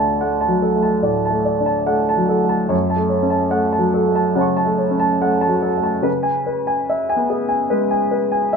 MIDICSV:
0, 0, Header, 1, 2, 480
1, 0, Start_track
1, 0, Tempo, 836820
1, 1563, Time_signature, 4, 2, 24, 8
1, 3477, Tempo, 823045
1, 4937, End_track
2, 0, Start_track
2, 0, Title_t, "Grand piano"
2, 0, Program_c, 0, 0
2, 0, Control_c, 0, 64, 127
2, 0, Note_on_c, 0, 38, 44
2, 0, Note_on_c, 0, 57, 36
2, 0, Note_on_c, 0, 62, 35
2, 0, Note_on_c, 0, 74, 35
2, 0, Note_on_c, 0, 81, 41
2, 67, Note_off_c, 0, 74, 0
2, 119, Note_off_c, 0, 57, 0
2, 119, Note_on_c, 0, 57, 37
2, 120, Note_on_c, 0, 78, 38
2, 185, Note_off_c, 0, 81, 0
2, 213, Note_off_c, 0, 62, 0
2, 234, Note_on_c, 0, 81, 40
2, 273, Note_on_c, 0, 54, 38
2, 310, Note_off_c, 0, 78, 0
2, 357, Note_on_c, 0, 69, 38
2, 373, Note_off_c, 0, 57, 0
2, 427, Note_off_c, 0, 81, 0
2, 433, Note_on_c, 0, 57, 34
2, 473, Note_on_c, 0, 81, 36
2, 531, Note_off_c, 0, 54, 0
2, 549, Note_off_c, 0, 69, 0
2, 574, Note_off_c, 0, 38, 0
2, 589, Note_on_c, 0, 45, 34
2, 589, Note_on_c, 0, 74, 39
2, 668, Note_off_c, 0, 81, 0
2, 692, Note_off_c, 0, 57, 0
2, 719, Note_on_c, 0, 81, 38
2, 746, Note_on_c, 0, 57, 36
2, 787, Note_off_c, 0, 74, 0
2, 831, Note_on_c, 0, 74, 38
2, 851, Note_off_c, 0, 45, 0
2, 913, Note_off_c, 0, 81, 0
2, 919, Note_on_c, 0, 62, 36
2, 953, Note_on_c, 0, 81, 39
2, 1011, Note_off_c, 0, 57, 0
2, 1030, Note_off_c, 0, 74, 0
2, 1071, Note_on_c, 0, 57, 38
2, 1071, Note_on_c, 0, 78, 42
2, 1151, Note_off_c, 0, 81, 0
2, 1179, Note_off_c, 0, 62, 0
2, 1199, Note_on_c, 0, 81, 41
2, 1244, Note_on_c, 0, 54, 36
2, 1270, Note_off_c, 0, 78, 0
2, 1313, Note_on_c, 0, 69, 39
2, 1334, Note_off_c, 0, 57, 0
2, 1394, Note_off_c, 0, 81, 0
2, 1398, Note_on_c, 0, 57, 35
2, 1429, Note_on_c, 0, 81, 40
2, 1499, Note_off_c, 0, 54, 0
2, 1510, Note_off_c, 0, 69, 0
2, 1543, Note_on_c, 0, 42, 46
2, 1543, Note_on_c, 0, 73, 41
2, 1556, Note_off_c, 0, 81, 0
2, 1560, Note_off_c, 0, 57, 0
2, 1573, Control_c, 0, 64, 0
2, 1663, Note_on_c, 0, 81, 39
2, 1677, Control_c, 0, 64, 127
2, 1700, Note_on_c, 0, 57, 39
2, 1743, Note_off_c, 0, 73, 0
2, 1775, Note_on_c, 0, 73, 36
2, 1849, Note_on_c, 0, 61, 34
2, 1864, Note_off_c, 0, 81, 0
2, 1894, Note_on_c, 0, 81, 41
2, 1966, Note_off_c, 0, 57, 0
2, 1979, Note_off_c, 0, 73, 0
2, 2009, Note_on_c, 0, 57, 39
2, 2013, Note_on_c, 0, 78, 45
2, 2099, Note_off_c, 0, 81, 0
2, 2121, Note_off_c, 0, 61, 0
2, 2137, Note_on_c, 0, 81, 43
2, 2169, Note_on_c, 0, 54, 38
2, 2219, Note_off_c, 0, 78, 0
2, 2261, Note_on_c, 0, 69, 39
2, 2281, Note_off_c, 0, 57, 0
2, 2341, Note_off_c, 0, 81, 0
2, 2341, Note_on_c, 0, 57, 35
2, 2383, Note_on_c, 0, 81, 41
2, 2440, Note_off_c, 0, 54, 0
2, 2462, Note_off_c, 0, 69, 0
2, 2486, Note_off_c, 0, 42, 0
2, 2497, Note_on_c, 0, 78, 30
2, 2499, Note_on_c, 0, 49, 36
2, 2501, Note_on_c, 0, 73, 39
2, 2505, Note_off_c, 0, 81, 0
2, 2513, Note_on_c, 0, 81, 31
2, 2531, Note_on_c, 0, 85, 30
2, 2605, Note_off_c, 0, 57, 0
2, 2610, Note_off_c, 0, 81, 0
2, 2619, Note_on_c, 0, 81, 44
2, 2666, Note_on_c, 0, 57, 37
2, 2701, Note_off_c, 0, 73, 0
2, 2742, Note_on_c, 0, 73, 38
2, 2763, Note_off_c, 0, 49, 0
2, 2814, Note_on_c, 0, 61, 36
2, 2819, Note_off_c, 0, 81, 0
2, 2865, Note_on_c, 0, 81, 45
2, 2927, Note_off_c, 0, 57, 0
2, 2941, Note_off_c, 0, 73, 0
2, 2984, Note_off_c, 0, 78, 0
2, 2990, Note_on_c, 0, 57, 41
2, 2992, Note_on_c, 0, 78, 47
2, 3063, Note_off_c, 0, 81, 0
2, 3082, Note_off_c, 0, 61, 0
2, 3105, Note_on_c, 0, 81, 46
2, 3140, Note_on_c, 0, 54, 39
2, 3188, Note_off_c, 0, 78, 0
2, 3225, Note_on_c, 0, 69, 41
2, 3251, Note_off_c, 0, 57, 0
2, 3304, Note_off_c, 0, 81, 0
2, 3311, Note_on_c, 0, 57, 39
2, 3345, Note_on_c, 0, 81, 40
2, 3406, Note_off_c, 0, 54, 0
2, 3424, Note_off_c, 0, 69, 0
2, 3455, Note_on_c, 0, 49, 50
2, 3458, Note_on_c, 0, 71, 47
2, 3462, Note_off_c, 0, 85, 0
2, 3472, Note_off_c, 0, 81, 0
2, 3475, Note_off_c, 0, 57, 0
2, 3490, Control_c, 0, 64, 0
2, 3575, Note_on_c, 0, 80, 44
2, 3592, Control_c, 0, 64, 127
2, 3662, Note_off_c, 0, 71, 0
2, 3712, Note_on_c, 0, 71, 42
2, 3780, Note_off_c, 0, 80, 0
2, 3833, Note_on_c, 0, 80, 44
2, 3908, Note_off_c, 0, 71, 0
2, 3963, Note_on_c, 0, 76, 48
2, 4029, Note_off_c, 0, 80, 0
2, 4080, Note_on_c, 0, 80, 45
2, 4120, Note_on_c, 0, 59, 41
2, 4154, Note_off_c, 0, 76, 0
2, 4198, Note_on_c, 0, 68, 43
2, 4272, Note_off_c, 0, 80, 0
2, 4308, Note_on_c, 0, 80, 40
2, 4375, Note_off_c, 0, 59, 0
2, 4391, Note_off_c, 0, 68, 0
2, 4404, Note_off_c, 0, 49, 0
2, 4433, Note_on_c, 0, 71, 44
2, 4436, Note_on_c, 0, 56, 41
2, 4505, Note_off_c, 0, 80, 0
2, 4553, Note_on_c, 0, 80, 43
2, 4627, Note_off_c, 0, 71, 0
2, 4672, Note_on_c, 0, 71, 45
2, 4693, Note_off_c, 0, 56, 0
2, 4748, Note_off_c, 0, 80, 0
2, 4792, Note_on_c, 0, 80, 46
2, 4867, Note_off_c, 0, 71, 0
2, 4916, Note_on_c, 0, 76, 53
2, 4937, Note_off_c, 0, 76, 0
2, 4937, Note_off_c, 0, 80, 0
2, 4937, End_track
0, 0, End_of_file